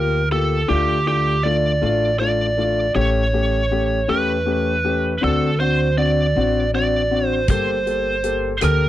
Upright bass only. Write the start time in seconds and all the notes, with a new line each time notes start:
Already playing: D2
0.70 D2
1.83 A1
2.95 A1
4.09 E2
5.24 D2
6.36 A1
7.48 G1
8.62 D2